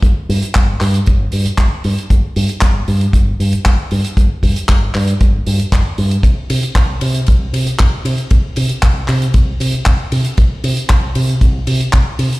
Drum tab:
RD |----------------|----------------|----------------|x-x-x-x-x-x-x-x-|
HH |x-oxx-oxx-oxx-ox|x-oxx-oxx-oxx-ox|x-oxx-oxx-oxx-ox|x-oxx-oxx-oxx-ox|
CP |----x-x-----x---|----x-------x---|----x-x-----x---|----x-------x---|
BD |o---o---o---o---|o---o---o---o---|o-o-o---o---o---|o---o---o---o---|

RD |x-x-x-x-x-x-x-x-|x-x-x-x-x-x-x-x-|
HH |x-oxx-oxx-oxx-ox|x-oxx-oxx-oxx-ox|
CP |----x-x-----x---|----x-------x---|
BD |o---o---o---o---|o---o---o---o---|